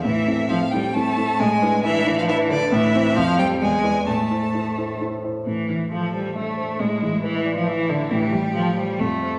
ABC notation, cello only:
X:1
M:3/4
L:1/16
Q:1/4=135
K:Am
V:1 name="Cello" clef=bass
E,4 F,2 G,2 A,4 | ^G,4 E,3 F, E,2 D,2 | E,4 F,2 G,2 ^G,4 | A,8 z4 |
E,4 F,2 G,2 A,4 | ^G,4 E,3 F, E,2 D,2 | E,2 G,2 F,2 G,2 A,4 |]